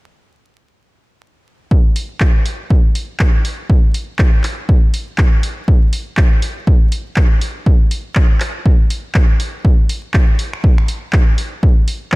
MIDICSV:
0, 0, Header, 1, 2, 480
1, 0, Start_track
1, 0, Tempo, 495868
1, 1658, Time_signature, 4, 2, 24, 8
1, 11768, End_track
2, 0, Start_track
2, 0, Title_t, "Drums"
2, 1657, Note_on_c, 9, 36, 104
2, 1754, Note_off_c, 9, 36, 0
2, 1897, Note_on_c, 9, 46, 98
2, 1993, Note_off_c, 9, 46, 0
2, 2133, Note_on_c, 9, 39, 113
2, 2137, Note_on_c, 9, 36, 106
2, 2230, Note_off_c, 9, 39, 0
2, 2234, Note_off_c, 9, 36, 0
2, 2378, Note_on_c, 9, 46, 94
2, 2474, Note_off_c, 9, 46, 0
2, 2617, Note_on_c, 9, 36, 107
2, 2714, Note_off_c, 9, 36, 0
2, 2857, Note_on_c, 9, 46, 95
2, 2954, Note_off_c, 9, 46, 0
2, 3093, Note_on_c, 9, 39, 114
2, 3098, Note_on_c, 9, 36, 105
2, 3189, Note_off_c, 9, 39, 0
2, 3194, Note_off_c, 9, 36, 0
2, 3338, Note_on_c, 9, 46, 98
2, 3435, Note_off_c, 9, 46, 0
2, 3578, Note_on_c, 9, 36, 110
2, 3674, Note_off_c, 9, 36, 0
2, 3818, Note_on_c, 9, 46, 102
2, 3915, Note_off_c, 9, 46, 0
2, 4054, Note_on_c, 9, 39, 113
2, 4058, Note_on_c, 9, 36, 117
2, 4151, Note_off_c, 9, 39, 0
2, 4155, Note_off_c, 9, 36, 0
2, 4294, Note_on_c, 9, 39, 59
2, 4299, Note_on_c, 9, 46, 102
2, 4391, Note_off_c, 9, 39, 0
2, 4396, Note_off_c, 9, 46, 0
2, 4538, Note_on_c, 9, 36, 110
2, 4635, Note_off_c, 9, 36, 0
2, 4779, Note_on_c, 9, 46, 103
2, 4876, Note_off_c, 9, 46, 0
2, 5014, Note_on_c, 9, 39, 116
2, 5018, Note_on_c, 9, 36, 114
2, 5111, Note_off_c, 9, 39, 0
2, 5115, Note_off_c, 9, 36, 0
2, 5258, Note_on_c, 9, 46, 106
2, 5355, Note_off_c, 9, 46, 0
2, 5498, Note_on_c, 9, 36, 114
2, 5595, Note_off_c, 9, 36, 0
2, 5738, Note_on_c, 9, 46, 107
2, 5835, Note_off_c, 9, 46, 0
2, 5974, Note_on_c, 9, 39, 119
2, 5978, Note_on_c, 9, 36, 115
2, 6070, Note_off_c, 9, 39, 0
2, 6075, Note_off_c, 9, 36, 0
2, 6217, Note_on_c, 9, 46, 106
2, 6314, Note_off_c, 9, 46, 0
2, 6458, Note_on_c, 9, 36, 121
2, 6555, Note_off_c, 9, 36, 0
2, 6698, Note_on_c, 9, 46, 105
2, 6795, Note_off_c, 9, 46, 0
2, 6934, Note_on_c, 9, 39, 117
2, 6939, Note_on_c, 9, 36, 115
2, 7030, Note_off_c, 9, 39, 0
2, 7035, Note_off_c, 9, 36, 0
2, 7178, Note_on_c, 9, 46, 104
2, 7274, Note_off_c, 9, 46, 0
2, 7419, Note_on_c, 9, 36, 110
2, 7515, Note_off_c, 9, 36, 0
2, 7658, Note_on_c, 9, 46, 102
2, 7755, Note_off_c, 9, 46, 0
2, 7893, Note_on_c, 9, 39, 108
2, 7898, Note_on_c, 9, 36, 116
2, 7989, Note_off_c, 9, 39, 0
2, 7995, Note_off_c, 9, 36, 0
2, 8134, Note_on_c, 9, 39, 59
2, 8138, Note_on_c, 9, 46, 104
2, 8231, Note_off_c, 9, 39, 0
2, 8235, Note_off_c, 9, 46, 0
2, 8378, Note_on_c, 9, 36, 116
2, 8475, Note_off_c, 9, 36, 0
2, 8619, Note_on_c, 9, 46, 106
2, 8716, Note_off_c, 9, 46, 0
2, 8853, Note_on_c, 9, 39, 110
2, 8858, Note_on_c, 9, 36, 116
2, 8950, Note_off_c, 9, 39, 0
2, 8955, Note_off_c, 9, 36, 0
2, 9098, Note_on_c, 9, 46, 102
2, 9195, Note_off_c, 9, 46, 0
2, 9338, Note_on_c, 9, 36, 109
2, 9435, Note_off_c, 9, 36, 0
2, 9577, Note_on_c, 9, 46, 103
2, 9674, Note_off_c, 9, 46, 0
2, 9813, Note_on_c, 9, 39, 105
2, 9818, Note_on_c, 9, 36, 106
2, 9910, Note_off_c, 9, 39, 0
2, 9914, Note_off_c, 9, 36, 0
2, 10057, Note_on_c, 9, 46, 99
2, 10154, Note_off_c, 9, 46, 0
2, 10197, Note_on_c, 9, 26, 75
2, 10294, Note_off_c, 9, 26, 0
2, 10298, Note_on_c, 9, 36, 110
2, 10394, Note_off_c, 9, 36, 0
2, 10437, Note_on_c, 9, 26, 63
2, 10534, Note_off_c, 9, 26, 0
2, 10536, Note_on_c, 9, 46, 104
2, 10632, Note_off_c, 9, 46, 0
2, 10772, Note_on_c, 9, 39, 108
2, 10777, Note_on_c, 9, 36, 112
2, 10868, Note_off_c, 9, 39, 0
2, 10874, Note_off_c, 9, 36, 0
2, 11016, Note_on_c, 9, 46, 101
2, 11113, Note_off_c, 9, 46, 0
2, 11257, Note_on_c, 9, 36, 107
2, 11354, Note_off_c, 9, 36, 0
2, 11496, Note_on_c, 9, 46, 94
2, 11593, Note_off_c, 9, 46, 0
2, 11731, Note_on_c, 9, 39, 108
2, 11737, Note_on_c, 9, 36, 111
2, 11768, Note_off_c, 9, 36, 0
2, 11768, Note_off_c, 9, 39, 0
2, 11768, End_track
0, 0, End_of_file